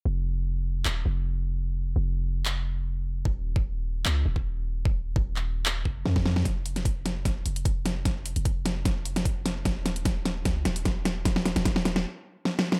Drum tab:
HH |------------------------------------------------|------------------------------------------------|------------------------------------------------|------------------------------------------------|
CP |------------------------x-----------------------|------------------------x-----------------------|------------------------x-----------------------|---------------x--------x-----------------------|
SD |------------------------------------------------|------------------------------------------------|------------------------------------------------|------------------------------------o--o--o--o--|
BD |------------------------------------------------|------------------------------------------------|o--------o-----------------------o--------------|o--------o--------------------o--------o--------|

HH |x-----x--x--x-----x-----x-----x--x--x-----x-----|x-----x--x--x-----x-----x-----x--x--x-----x-----|x-----x--x--x-----x-----x-----x--x--x-----x-----|x-----x--x--x-----x-----------------------------|
CP |------------------------------------------------|------------------------------------------------|------------------------------------------------|------------------------------------------------|
SD |o--------o--------o-----o-----------------o-----|o-----------------o-----o--------o--------o-----|o-----o-----o-----o-----o-----o-----o-----o-----|o--o--o--o--o--o--o--o--------------o---o---o---|
BD |o-----------o-----------o-----------o-----------|o-----------o-----------o-----------o-----------|o-----------o-----------o-----------o-----------|o-----------o-----------------------------------|